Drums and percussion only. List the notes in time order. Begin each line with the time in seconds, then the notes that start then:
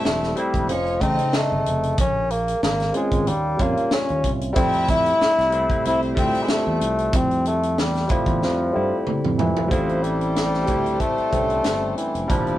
0.05 snare
0.23 snare
0.36 closed hi-hat
0.54 kick, closed hi-hat
0.69 closed hi-hat
0.86 closed hi-hat
1.01 kick, closed hi-hat
1.19 closed hi-hat
1.33 snare
1.66 closed hi-hat
1.83 closed hi-hat
1.98 kick, closed hi-hat
2.30 closed hi-hat
2.48 closed hi-hat
2.63 snare
2.80 snare, closed hi-hat
2.94 closed hi-hat
3.12 kick, closed hi-hat
3.27 closed hi-hat
3.59 kick, closed hi-hat
3.77 closed hi-hat
3.91 snare
4.09 closed hi-hat
4.24 kick, closed hi-hat
4.41 closed hi-hat
4.56 kick, closed hi-hat
4.73 closed hi-hat
4.88 kick, closed hi-hat
5.06 closed hi-hat
5.21 snare
5.39 snare, closed hi-hat
5.52 closed hi-hat
5.70 kick, closed hi-hat
5.85 closed hi-hat
6.03 closed hi-hat
6.17 kick, closed hi-hat
6.35 closed hi-hat
6.49 snare
6.81 closed hi-hat
6.99 closed hi-hat
7.13 kick, closed hi-hat
7.31 closed hi-hat
7.45 closed hi-hat
7.63 closed hi-hat
7.78 snare
7.95 snare, closed hi-hat
8.09 kick, closed hi-hat
8.26 kick, closed hi-hat
8.42 snare
9.07 mid tom
9.24 mid tom
9.39 floor tom
9.57 floor tom
9.71 kick, closed hi-hat
9.89 closed hi-hat
10.04 closed hi-hat
10.21 closed hi-hat
10.36 snare, closed hi-hat
10.54 snare
10.67 kick, closed hi-hat
10.86 closed hi-hat
11.00 kick, closed hi-hat
11.18 closed hi-hat
11.33 kick, closed hi-hat
11.50 closed hi-hat
11.64 snare, closed hi-hat
11.98 closed hi-hat
12.15 closed hi-hat
12.30 kick, closed hi-hat
12.47 closed hi-hat